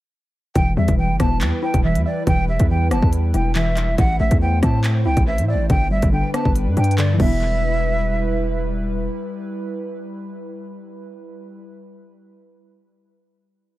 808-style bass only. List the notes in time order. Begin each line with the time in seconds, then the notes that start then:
0.56 E1
0.77 E2
0.88 E1
1.10 F#1
1.20 E1
1.41 E2
1.74 E1
1.95 E2
2.27 E1
2.60 E2
2.91 F#1
3.02 E2
3.34 E1
3.98 A1
4.20 A1
4.31 E2
4.63 A2
5.05 C2
5.17 A1
5.38 A2
5.54 A1
5.70 G1
6.03 G1
6.45 G1
6.67 G2
6.77 G2
7.20 E1